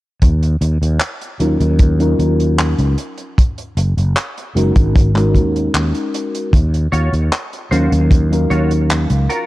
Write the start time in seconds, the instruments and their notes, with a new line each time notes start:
0.22 fretless electric bass D#2, kick, closed hi-hat
0.43 closed hi-hat
0.61 fretless electric bass D#2, closed hi-hat
0.82 fretless electric bass D#2, closed hi-hat
1.00 clap, closed hi-hat
1.21 closed hi-hat
1.39 fretless electric bass D#2, fm electric piano F#3 C#4 D#4 F4 A#4, closed hi-hat
1.60 fretless electric bass D#2, closed hi-hat
1.79 kick, closed hi-hat
1.98 fm electric piano F#3 C#4 D#4 F4 A#4, closed hi-hat
2.19 fretless electric bass D#2, closed hi-hat
2.40 closed hi-hat
2.59 clap, closed hi-hat
2.79 fretless electric bass C#2, closed hi-hat
2.98 closed hi-hat
3.18 closed hi-hat
3.38 kick, closed hi-hat
3.58 closed hi-hat
3.77 fretless electric bass F#1, closed hi-hat
3.97 fretless electric bass F#1, closed hi-hat
4.17 clap, closed hi-hat
4.38 closed hi-hat
4.55 fretless electric bass F#1, fm electric piano G#3 C#4 D#4 F#4 A#4, closed hi-hat
4.76 fretless electric bass G#1, kick, closed hi-hat
4.96 kick, closed hi-hat
5.14 fm electric piano G#3 C#4 D#4 F#4 A#4, clap, closed hi-hat
5.35 fretless electric bass D#2, kick, closed hi-hat
5.56 closed hi-hat
5.74 fretless electric bass D#2, clap, closed hi-hat
5.95 closed hi-hat
6.14 closed hi-hat
6.35 closed hi-hat
6.53 fretless electric bass D#2, kick, closed hi-hat
6.74 closed hi-hat
6.92 fretless electric bass D#2, clean electric guitar F4 F#4 C#5, closed hi-hat
7.13 fretless electric bass D#2, closed hi-hat
7.33 clap, closed hi-hat
7.53 closed hi-hat
7.71 fretless electric bass D#2, fm electric piano F#3 C#4 D#4 A#4 F5, clean electric guitar F4 F#4 C5, closed hi-hat
7.92 fretless electric bass D#2, closed hi-hat
8.11 kick, closed hi-hat
8.30 fm electric piano F#3 C#4 D#4 A#4 F5, closed hi-hat
8.50 fretless electric bass D#2, clean electric guitar F4 F#4 C#5, closed hi-hat
8.71 closed hi-hat
8.90 clap, closed hi-hat
9.10 fretless electric bass C#2, closed hi-hat
9.29 clean electric guitar F4 F#4 A#4, closed hi-hat